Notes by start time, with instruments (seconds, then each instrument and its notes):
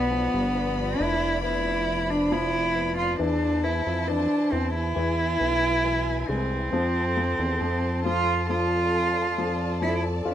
Already playing: analog synth bass B1, string section F3 D5 B5, upright piano B3, cello B3
0.11 upright piano F3
0.34 analog synth bass G1
0.55 upright piano B3
0.99 analog synth bass F1, upright piano D4, cello E4
1.43 upright piano B3, cello E4
2.10 cello D4
2.31 upright piano F3, cello E4
2.75 upright piano B3
2.97 cello F4
3.19 analog synth bass E2, upright piano E3, cello D4, string section E4 C5 A5
3.64 upright piano E3, cello E4
3.87 analog synth bass F2
4.08 upright piano E3, cello D4
4.52 analog synth bass E2, upright piano E3, cello C4
4.74 cello E4
4.96 analog synth bass E2, upright piano E3, string section E4 B4 G#5
5.40 analog synth bass B1, upright piano B4
5.84 upright piano E3
6.28 analog synth bass C2, upright piano G#3, cello C4
6.73 analog synth bass F2, upright piano F3, string section A4 C5 A5
7.17 upright piano F3
7.39 analog synth bass E2
7.61 analog synth bass F2, upright piano F3
8.06 upright piano F3, cello F4
8.50 upright piano F3, cello F4, string section D5
9.38 upright piano F3
9.82 upright piano F3, cello E4
10.25 analog synth bass F2, cello D4, upright piano F4